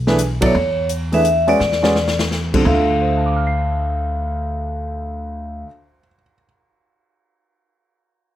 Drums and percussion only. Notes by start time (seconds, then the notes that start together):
0.07 snare
0.19 closed hi-hat
0.42 kick, ride
0.89 closed hi-hat
1.13 open hi-hat
1.25 closed hi-hat
1.48 open hi-hat
1.60 snare
1.72 snare
1.84 snare
1.96 snare
2.08 snare
2.19 snare
2.31 snare
2.54 kick, crash